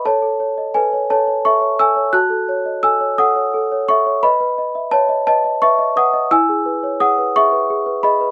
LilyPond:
\new Staff \with { instrumentName = "Celesta" } { \time 6/8 \key e \major \tempo 4. = 57 << { <cis'' a''>4 <b' gis''>8 <cis'' a''>8 <e'' cis'''>8 <gis'' e'''>8 | <a'' fis'''>4 <gis'' e'''>8 <fis'' dis'''>4 <e'' cis'''>8 | <dis'' b''>4 <cis'' a''>8 <dis'' a''>8 <e'' cis'''>8 <fis'' dis'''>8 | <gis'' e'''>4 <fis'' dis'''>8 <e'' cis'''>4 <dis'' b''>8 | } \\ { a'16 a'16 cis''16 dis''16 a'16 cis''16 a'16 cis''16 a'16 cis''16 a'16 cis''16 | fis'16 a'16 cis''16 dis''16 a'16 cis''16 a'16 cis''16 a'16 cis''16 a'16 cis''16 | b'16 b'16 dis''16 e''16 b'16 dis''16 b'16 dis''16 b'16 dis''16 b'16 dis''16 | e'16 gis'16 b'16 cis''16 gis'16 b'16 gis'16 b'16 gis'16 b'16 gis'16 b'16 | } >> }